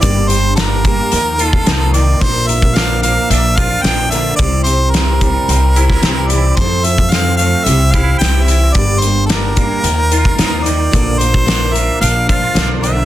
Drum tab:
HH |x-x-x-x-x-x-x-x-|x-x-x-x-x-x-x-x-|x-x-x-x-x-x-x-x-|x-x-x-x-x-x-x-x-|
SD |----o-------o---|----o-------o---|----o------oo---|----o-------o---|
BD |o-----o----o----|o--o------o-----|o-----o----o----|o--o------o-----|

HH |x-x-x-x-x-x-x-x-|x-x-x-x-x-x-x-x-|
SD |----o-------o---|----o-------o---|
BD |o-----o----o----|o--o------o-----|